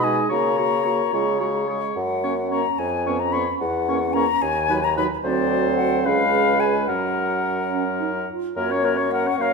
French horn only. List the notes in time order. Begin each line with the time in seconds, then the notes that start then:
0.05 G#3
0.32 A#3
0.60 A#3
0.85 A#3
1.13 G#3
1.41 G#3
1.69 G#3
2.24 A#3
2.52 A#3
3.07 B3
3.34 B3
3.89 A#3
4.15 A#3
4.69 F#3
4.97 F#3
5.24 F#3
6.06 G#3
6.89 F#3
8.58 A#3
8.70 C#4
8.84 A#3
8.97 C#4
9.12 A#3
9.26 C#4
9.39 A#3